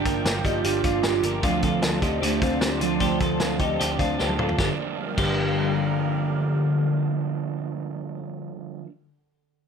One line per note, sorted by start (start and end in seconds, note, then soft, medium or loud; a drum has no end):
0.00 0.27 D4 loud
0.00 4.55 F4 medium
0.00 1.41 A#4 medium
0.00 4.55 D5 medium
0.00 1.41 G5 medium
0.05 0.22 G1 medium
0.05 0.24 F3 soft
0.05 0.25 A#3 soft
0.05 0.25 D4 soft
0.05 0.43 G4 medium
0.05 0.43 A#4 medium
0.05 kick medium
0.05 closed hi-hat medium
0.24 0.41 G1 loud
0.24 0.44 D3 medium
0.24 0.45 F3 medium
0.24 0.44 A#3 medium
0.24 0.42 D4 medium
0.24 snare loud
0.24 closed hi-hat medium
0.43 0.61 G1 medium
0.43 0.63 F3 soft
0.43 0.64 A#3 soft
0.43 0.64 D4 soft
0.43 0.65 D#4 medium
0.43 0.64 G4 medium
0.43 kick medium
0.43 closed hi-hat medium
0.47 1.21 F4 loud
0.63 0.80 G1 medium
0.63 0.84 G2 medium
0.63 0.84 D3 medium
0.63 0.84 F3 medium
0.63 0.84 A#3 medium
0.63 0.82 D4 medium
0.63 0.84 D4 medium
0.63 0.84 G4 medium
0.63 closed hi-hat medium
0.83 1.01 G1 medium
0.83 1.02 F3 soft
0.83 1.03 A#3 soft
0.83 1.03 D4 soft
0.83 1.04 D4 medium
0.83 1.04 F4 medium
0.83 kick medium
0.83 closed hi-hat medium
1.02 1.20 G1 loud
1.02 1.23 D3 medium
1.02 1.23 F3 medium
1.02 1.22 A#3 medium
1.02 1.24 D4 soft
1.02 1.22 D4 medium
1.02 1.24 G4 medium
1.02 snare loud
1.02 closed hi-hat medium
1.23 1.40 G1 loud
1.23 1.42 F3 soft
1.23 1.42 A#3 medium
1.23 1.43 D4 medium
1.23 1.43 G4 medium
1.23 1.44 A#4 medium
1.23 closed hi-hat medium
1.41 1.60 D2 loud
1.41 1.62 D3 medium
1.41 1.62 A3 medium
1.41 1.62 C4 medium
1.41 1.64 D4 medium
1.41 1.60 F4 medium
1.41 1.63 F4 medium
1.41 4.55 C5 medium
1.41 4.55 A5 medium
1.41 kick loud
1.41 closed hi-hat medium
1.46 2.00 F3 medium
1.61 1.79 D2 medium
1.61 1.81 A3 soft
1.61 1.82 C4 soft
1.61 1.82 F4 soft
1.61 2.01 F4 medium
1.61 2.00 A4 medium
1.61 kick medium
1.61 closed hi-hat medium
1.82 1.99 D2 medium
1.82 2.02 D3 medium
1.82 2.02 A3 medium
1.82 2.01 C4 medium
1.82 2.00 F4 medium
1.82 snare loud
1.82 closed hi-hat medium
2.01 2.19 D2 medium
2.01 2.21 A3 soft
2.01 2.21 C4 medium
2.01 2.22 D#4 medium
2.01 2.21 F4 medium
2.01 2.21 G4 medium
2.01 kick medium
2.01 closed hi-hat medium
2.21 2.39 D2 medium
2.21 2.41 D3 medium
2.21 2.42 A3 medium
2.21 2.45 A3 loud
2.21 2.40 C4 medium
2.21 2.41 D4 medium
2.21 2.39 F4 medium
2.21 2.41 G4 medium
2.21 closed hi-hat medium
2.40 2.58 D2 medium
2.40 2.59 A3 soft
2.40 2.60 C4 soft
2.40 2.82 C4 loud
2.40 2.61 D4 medium
2.40 2.61 F4 soft
2.40 2.61 F4 medium
2.40 kick loud
2.40 closed hi-hat medium
2.60 2.78 D2 medium
2.60 2.80 D3 medium
2.60 2.81 A3 medium
2.60 2.80 C4 medium
2.60 2.81 D4 medium
2.60 2.78 F4 medium
2.60 2.81 G4 medium
2.60 snare loud
2.60 closed hi-hat medium
2.79 2.97 D2 loud
2.79 4.16 F3 medium
2.79 2.99 A3 soft
2.79 3.00 C4 soft
2.79 3.01 D4 medium
2.79 3.00 F4 medium
2.79 3.01 F4 medium
2.79 closed hi-hat medium
3.00 3.17 D2 loud
3.00 3.20 D3 medium
3.00 3.21 A3 medium
3.00 3.20 C4 medium
3.00 3.21 D4 medium
3.00 3.18 F4 medium
3.00 3.20 G4 medium
3.00 kick medium
3.00 closed hi-hat medium
3.19 3.37 D2 medium
3.19 3.39 A3 soft
3.19 3.40 C4 soft
3.19 3.40 F4 soft
3.19 3.58 F4 medium
3.19 3.58 A4 medium
3.19 kick medium
3.19 closed hi-hat medium
3.39 3.57 D2 medium
3.39 3.59 D3 medium
3.39 3.60 A3 medium
3.39 3.60 C4 medium
3.39 3.58 F4 medium
3.39 snare loud
3.39 closed hi-hat medium
3.59 3.76 D2 medium
3.59 3.78 A3 soft
3.59 3.78 C4 soft
3.59 3.80 D#4 medium
3.59 3.79 F4 soft
3.59 3.78 G4 medium
3.59 kick medium
3.59 closed hi-hat medium
3.78 3.97 D2 loud
3.78 3.99 D3 medium
3.78 3.99 A3 medium
3.78 3.99 C4 medium
3.78 3.99 D4 medium
3.78 3.97 F4 medium
3.78 3.99 G4 medium
3.78 closed hi-hat loud
3.98 4.16 D2 medium
3.98 4.18 A3 soft
3.98 4.18 C4 medium
3.98 4.18 D4 medium
3.98 4.19 F4 medium
3.98 kick medium
3.98 closed hi-hat medium
4.17 4.36 D2 medium
4.17 4.38 D3 medium
4.17 4.39 A3 medium
4.17 4.39 C4 medium
4.17 4.39 D4 medium
4.17 4.37 F4 medium
4.17 4.38 G4 medium
4.17 snare medium
4.29 high tom medium
4.38 4.56 D2 loud
4.38 4.60 A3 soft
4.38 4.59 C4 soft
4.38 4.58 F4 medium
4.38 4.59 F4 medium
4.38 4.58 A4 medium
4.38 mid tom medium
4.49 floor tom medium
4.55 4.70 G1 medium
4.55 5.14 G2 medium
4.55 4.70 D3 loud
4.55 5.17 D3 medium
4.55 8.19 G3 medium
4.55 8.20 G4 medium
4.55 4.70 G4 medium
4.55 8.20 A#4 medium
4.55 8.20 F5 medium
4.55 kick medium
4.55 snare medium
4.61 5.18 F3 medium
4.61 5.23 A#3 medium
4.66 5.25 D4 medium
5.15 8.80 G1 medium
5.15 8.81 G2 medium
5.15 8.49 D3 loud
5.15 8.84 D3 medium
5.15 5.73 G4 medium
5.15 kick medium
5.15 crash medium
5.20 8.86 F3 medium
5.20 8.89 A#3 medium
5.25 8.91 D4 medium